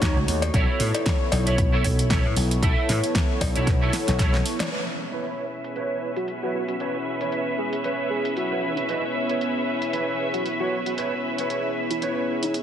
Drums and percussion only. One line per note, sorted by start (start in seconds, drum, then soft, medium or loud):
0.02 kick loud
0.02 snare loud
0.02 closed hi-hat soft
0.28 open hi-hat loud
0.42 closed hi-hat medium
0.42 cowbell medium
0.54 kick loud
0.54 closed hi-hat medium
0.80 open hi-hat loud
0.94 closed hi-hat medium
0.94 cowbell medium
1.06 kick loud
1.06 snare loud
1.06 closed hi-hat medium
1.32 open hi-hat loud
1.32 cowbell medium
1.47 closed hi-hat medium
1.58 kick loud
1.58 closed hi-hat medium
1.84 kick medium
1.84 open hi-hat medium
1.99 closed hi-hat medium
2.10 kick loud
2.10 snare loud
2.10 closed hi-hat medium
2.37 open hi-hat loud
2.51 closed hi-hat medium
2.63 kick loud
2.63 closed hi-hat medium
2.89 snare medium
2.89 open hi-hat loud
3.04 closed hi-hat medium
3.15 kick loud
3.15 snare loud
3.15 closed hi-hat medium
3.41 kick medium
3.41 open hi-hat loud
3.41 cowbell medium
3.56 closed hi-hat medium
3.67 kick loud
3.67 snare medium
3.67 closed hi-hat medium
3.93 snare medium
3.93 open hi-hat loud
4.08 snare medium
4.08 closed hi-hat medium
4.19 kick loud
4.19 snare medium
4.19 closed hi-hat medium
4.34 snare medium
4.46 open hi-hat loud
4.60 snare medium
4.60 closed hi-hat medium
4.60 cowbell medium
4.72 closed hi-hat soft
5.12 closed hi-hat medium
5.24 closed hi-hat soft
5.64 closed hi-hat medium
5.76 closed hi-hat soft
6.16 closed hi-hat medium
6.28 closed hi-hat soft
6.68 closed hi-hat medium
6.80 closed hi-hat soft
7.21 closed hi-hat medium
7.32 closed hi-hat soft
7.73 closed hi-hat medium
7.84 closed hi-hat soft
8.25 closed hi-hat medium
8.37 closed hi-hat soft
8.77 closed hi-hat medium
8.89 closed hi-hat soft
9.29 closed hi-hat medium
9.41 closed hi-hat soft
9.82 closed hi-hat medium
9.93 closed hi-hat soft
10.34 closed hi-hat medium
10.46 closed hi-hat soft
10.86 closed hi-hat medium
10.98 closed hi-hat soft
11.38 closed hi-hat medium
11.50 closed hi-hat soft
11.91 closed hi-hat medium
12.02 closed hi-hat soft
12.43 closed hi-hat medium
12.54 closed hi-hat soft